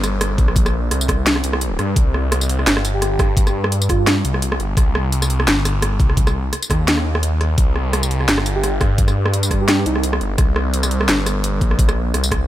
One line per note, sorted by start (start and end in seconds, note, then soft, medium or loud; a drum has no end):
0.00 0.37 G1 loud
0.00 cross-stick medium
0.00 closed hi-hat medium
0.00 tambourine soft
0.21 cross-stick medium
0.21 closed hi-hat medium
0.38 0.90 A#1 medium
0.38 kick loud
0.38 closed hi-hat soft
0.48 cross-stick medium
0.56 kick loud
0.56 closed hi-hat medium
0.66 cross-stick medium
0.66 tambourine soft
0.91 1.43 C2 loud
0.91 cross-stick medium
0.91 closed hi-hat medium
1.01 tambourine medium
1.08 kick medium
1.08 cross-stick medium
1.08 closed hi-hat medium
1.26 snare loud
1.26 closed hi-hat medium
1.36 cross-stick medium
1.44 1.78 C2 loud
1.44 closed hi-hat medium
1.53 cross-stick medium
1.61 closed hi-hat medium
1.79 1.95 G2 medium
1.79 cross-stick medium
1.79 closed hi-hat soft
1.96 2.65 C2 loud
1.96 kick loud
1.96 closed hi-hat medium
2.14 cross-stick medium
2.32 cross-stick medium
2.32 closed hi-hat medium
2.41 tambourine medium
2.49 closed hi-hat medium
2.59 cross-stick medium
2.67 3.18 G1 loud
2.67 snare loud
2.67 closed hi-hat medium
2.77 cross-stick medium
2.85 closed hi-hat medium
2.85 tambourine soft
2.94 3.15 G4 loud
3.02 cross-stick medium
3.02 closed hi-hat medium
3.19 4.23 G2 loud
3.19 kick loud
3.19 cross-stick medium
3.19 closed hi-hat soft
3.37 kick loud
3.37 closed hi-hat medium
3.47 cross-stick medium
3.47 tambourine soft
3.64 cross-stick medium
3.72 closed hi-hat medium
3.82 tambourine medium
3.89 3.96 F4 medium
3.89 kick medium
3.89 cross-stick medium
3.89 closed hi-hat medium
3.99 4.04 F4 medium
4.07 cross-stick medium
4.07 snare loud
4.07 closed hi-hat medium
4.25 4.58 C2 loud
4.25 closed hi-hat medium
4.34 cross-stick medium
4.42 closed hi-hat medium
4.52 cross-stick medium
4.60 4.76 G1 medium
4.60 closed hi-hat soft
4.77 5.46 C2 loud
4.77 kick loud
4.77 cross-stick medium
4.77 closed hi-hat medium
4.95 cross-stick medium
5.12 closed hi-hat medium
5.22 cross-stick medium
5.22 tambourine medium
5.30 closed hi-hat medium
5.40 cross-stick medium
5.48 5.99 G1 loud
5.48 snare loud
5.48 closed hi-hat medium
5.65 cross-stick medium
5.65 closed hi-hat medium
5.65 tambourine soft
5.82 cross-stick medium
5.82 closed hi-hat medium
6.00 6.51 C2 medium
6.00 kick loud
6.00 closed hi-hat soft
6.10 cross-stick soft
6.17 kick loud
6.17 closed hi-hat medium
6.27 cross-stick medium
6.27 tambourine soft
6.53 cross-stick medium
6.53 closed hi-hat medium
6.63 tambourine medium
6.70 7.56 D#2 loud
6.70 kick medium
6.70 cross-stick medium
6.70 closed hi-hat medium
6.88 snare loud
6.88 closed hi-hat medium
6.97 cross-stick medium
7.15 cross-stick medium
7.23 closed hi-hat medium
7.41 cross-stick medium
7.41 closed hi-hat soft
7.58 8.27 C2 medium
7.58 kick loud
7.58 closed hi-hat medium
7.76 cross-stick soft
7.93 cross-stick medium
7.93 closed hi-hat medium
8.03 tambourine medium
8.11 closed hi-hat medium
8.20 cross-stick soft
8.28 8.80 G1 loud
8.28 snare loud
8.28 closed hi-hat medium
8.38 cross-stick medium
8.46 closed hi-hat medium
8.46 tambourine soft
8.56 8.76 G4 medium
8.64 cross-stick medium
8.64 closed hi-hat medium
8.81 9.85 G2 medium
8.81 kick loud
8.81 cross-stick medium
8.81 closed hi-hat soft
8.98 kick loud
8.98 closed hi-hat medium
9.08 cross-stick medium
9.08 tambourine soft
9.26 cross-stick medium
9.34 closed hi-hat medium
9.43 tambourine medium
9.51 kick medium
9.51 cross-stick medium
9.51 closed hi-hat medium
9.61 9.82 G4 loud
9.68 cross-stick medium
9.68 snare loud
9.68 closed hi-hat medium
9.86 10.20 C2 medium
9.86 9.92 D#4 medium
9.86 closed hi-hat medium
9.96 10.01 D#4 medium
9.96 cross-stick medium
10.03 closed hi-hat medium
10.13 cross-stick medium
10.21 10.38 G1 loud
10.21 closed hi-hat soft
10.38 11.07 C2 loud
10.38 kick loud
10.38 cross-stick medium
10.38 closed hi-hat medium
10.56 cross-stick medium
10.74 closed hi-hat medium
10.83 cross-stick medium
10.83 tambourine medium
10.91 closed hi-hat medium
11.01 cross-stick medium
11.09 11.60 G1 loud
11.09 snare loud
11.09 closed hi-hat medium
11.26 cross-stick medium
11.26 closed hi-hat medium
11.26 tambourine soft
11.44 closed hi-hat medium
11.61 12.13 A#1 loud
11.61 kick loud
11.61 closed hi-hat soft
11.71 cross-stick medium
11.79 kick loud
11.79 closed hi-hat medium
11.89 cross-stick medium
11.89 tambourine soft
12.14 12.47 C2 loud
12.14 cross-stick medium
12.14 closed hi-hat medium
12.24 tambourine medium
12.31 kick medium
12.31 cross-stick medium
12.31 closed hi-hat medium